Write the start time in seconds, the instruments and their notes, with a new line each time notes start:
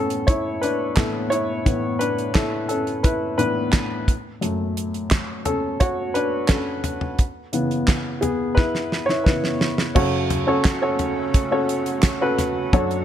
Already playing: grand piano A2 E3 B3 C#4 A4
0.10 closed hi-hat
0.27 grand piano E4 C#5, kick, closed hi-hat
0.61 grand piano D4 B4, closed hi-hat
0.96 grand piano A2 E3 B3 E4 A4, kick, snare, clap, closed hi-hat
1.30 grand piano E4 C#5, closed hi-hat
1.65 grand piano A2 E3 B3, kick, closed hi-hat
1.99 grand piano D4 B4, closed hi-hat
2.19 closed hi-hat
2.34 grand piano E4 A4, kick, snare, clap, closed hi-hat
2.69 grand piano C#4 A4, closed hi-hat
2.87 closed hi-hat
3.03 grand piano E4 B4, kick, closed hi-hat
3.38 grand piano A2 E3 B3 D4 B4, closed hi-hat
3.72 kick, snare, clap, closed hi-hat
4.08 kick, closed hi-hat
4.41 grand piano F#2 A3, closed hi-hat
4.77 closed hi-hat
4.94 closed hi-hat
5.11 kick, snare, clap, closed hi-hat
5.45 grand piano C#4 A4, closed hi-hat, floor tom
5.80 grand piano F#4 C#5, kick, closed hi-hat
6.14 grand piano D4 B4, closed hi-hat
6.48 grand piano C#4 A4, kick, snare, clap, closed hi-hat
6.84 closed hi-hat, floor tom
7.01 floor tom
7.19 kick, closed hi-hat
7.53 grand piano C#3 E3 B3, closed hi-hat
7.71 closed hi-hat
7.87 kick, snare, clap, closed hi-hat
8.21 grand piano B3 G#4, closed hi-hat, floor tom
8.55 grand piano E4 B4, kick, snare
8.75 snare
8.92 snare
9.06 grand piano E4 C#5, snare
9.24 grand piano C#3 E3 B3 E4 B4, kick, snare
9.44 snare
9.61 snare
9.78 snare
9.95 grand piano F#2 C#3 C#4 F#4 A4 C#5, analog synth pad C#3 A3 F#4, kick, crash
10.30 closed hi-hat, floor tom
10.47 grand piano C#4 F#4 A4 C#5
10.64 kick, snare, clap, closed hi-hat
10.82 grand piano C#4 F#4 A4 C#5
10.99 closed hi-hat, floor tom
11.34 kick, closed hi-hat
11.51 grand piano C#4 F#4 A4 C#5
11.69 closed hi-hat
11.86 closed hi-hat
12.02 kick, snare, clap, closed hi-hat
12.21 grand piano C#4 F#4 A4 B4
12.38 snare, closed hi-hat, floor tom
12.73 grand piano F#2 F#3 D4 F#4 A4 C#5, analog synth pad F#2 D3 D4, kick, closed hi-hat
12.91 closed hi-hat